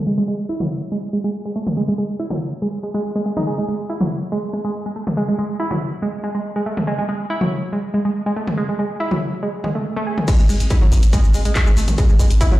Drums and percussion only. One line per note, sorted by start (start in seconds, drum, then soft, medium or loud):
0.60 mid tom medium
1.67 mid tom medium
2.30 mid tom medium
3.37 mid tom medium
4.01 mid tom medium
5.07 mid tom medium
5.71 mid tom medium
6.77 mid tom medium
7.41 mid tom medium
8.47 mid tom medium
9.11 mid tom medium
9.64 mid tom medium
10.18 mid tom medium
10.28 kick loud
10.28 closed hi-hat medium
10.28 crash loud
10.28 ride medium
10.28 shaker soft
10.39 shaker soft
10.49 open hi-hat loud
10.49 shaker medium
10.60 closed hi-hat medium
10.60 shaker soft
10.70 kick loud
10.70 closed hi-hat medium
10.70 ride medium
10.70 shaker soft
10.82 mid tom medium
10.92 kick medium
10.92 open hi-hat medium
10.92 shaker medium
11.03 closed hi-hat medium
11.03 shaker soft
11.13 kick loud
11.13 closed hi-hat medium
11.13 ride medium
11.13 shaker soft
11.24 shaker soft
11.34 open hi-hat loud
11.34 shaker medium
11.45 closed hi-hat medium
11.45 shaker soft
11.55 kick loud
11.55 clap loud
11.55 closed hi-hat medium
11.55 ride medium
11.55 shaker soft
11.67 shaker soft
11.77 open hi-hat medium
11.77 shaker medium
11.88 closed hi-hat medium
11.88 mid tom medium
11.88 shaker soft
11.98 kick loud
11.98 closed hi-hat medium
11.98 ride medium
11.98 shaker soft
12.09 shaker soft
12.19 kick medium
12.19 open hi-hat loud
12.19 shaker medium
12.31 closed hi-hat medium
12.31 shaker soft
12.41 kick loud
12.41 closed hi-hat medium
12.41 ride medium
12.41 shaker soft
12.52 mid tom medium